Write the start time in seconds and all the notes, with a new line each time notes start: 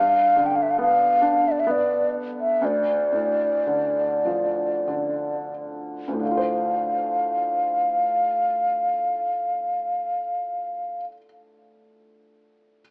Already playing: G2 F5
0.36 D3
0.46 G5
0.56 F5
0.62 E5
0.70 F5
0.78 B3 F5
1.22 D4
1.48 D5 E5
1.60 E5
1.67 B3
1.71 D5
2.40 E5
2.61 D2 D5
3.12 A2
3.67 D3
4.25 F3
4.88 D3
6.08 D2
6.13 A2
6.20 D3 F5
6.25 A3
6.31 F4
6.37 C5